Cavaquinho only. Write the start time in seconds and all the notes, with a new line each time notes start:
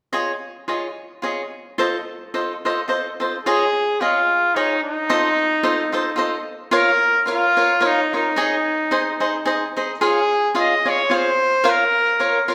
0.13 F4 G#4 C#5 D#5
0.68 F4 G#4 C#5 D#5
1.22 F4 G#4 C#5 D#5
1.78 F4 A4 C5 D#5
2.34 F4 A4 C5 D#5
2.65 F4 A4 C5 D#5
2.88 F4 A4 C5 D#5
3.20 F4 A4 C5 D#5
3.46 F4 G#4 C#5 D#5
4.01 F4 G#4 C#5 D#5
4.56 F4 G#4 C#5 D#5
5.09 F4 A4 C5 D#5
5.63 F4 A4 C5 D#5
5.92 F4 A4 C5 D#5
6.16 F4 A4 C5 D#5
6.71 F4 A#4 C#5 F5
7.26 F4 A#4 C#5 F5
7.57 F4 A#4 C#5 F5
7.80 F4 A#4 C#5 F5
8.13 F4 A#4 C#5 F5
8.36 D#4 G#4 C#5 D#5
8.91 D#4 G#4 C5 D#5
9.20 D#4 G#4 C5 D#5
9.45 D#4 G#4 C5 D#5
9.76 D#4 G#4 C5 D#5
10.01 F4 G#4 C#5 F5
10.54 F4 G#4 C#5 F5
10.86 F4 G#4 C#5 F5
11.10 F4 G#4 C#5 F5
11.64 F4 A#4 C#5 F5
12.19 F4 A#4 C#5 F5
12.48 F4 A#4 C#5 F5